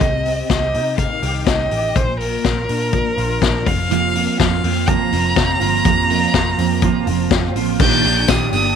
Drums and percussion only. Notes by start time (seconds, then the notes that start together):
0.01 kick, closed hi-hat
0.26 open hi-hat
0.50 kick, snare, closed hi-hat
0.74 open hi-hat
0.98 kick, closed hi-hat
1.23 open hi-hat
1.46 kick, snare, closed hi-hat
1.71 open hi-hat
1.96 kick, closed hi-hat
2.20 open hi-hat
2.44 kick, snare, closed hi-hat
2.69 open hi-hat
2.93 kick, closed hi-hat
3.18 open hi-hat
3.42 kick, snare, closed hi-hat
3.66 kick, open hi-hat
3.91 closed hi-hat
4.15 open hi-hat
4.40 kick, snare, closed hi-hat
4.64 open hi-hat
4.87 kick, closed hi-hat
5.12 open hi-hat
5.36 kick, snare, closed hi-hat
5.61 open hi-hat
5.85 kick, closed hi-hat
6.10 open hi-hat
6.34 kick, snare, closed hi-hat
6.58 open hi-hat
6.82 kick, closed hi-hat
7.07 open hi-hat
7.31 kick, snare, closed hi-hat
7.56 open hi-hat
7.80 kick, crash, tambourine
8.04 open hi-hat, tambourine
8.28 kick, snare, hi-hat pedal, ride, tambourine
8.53 open hi-hat, tambourine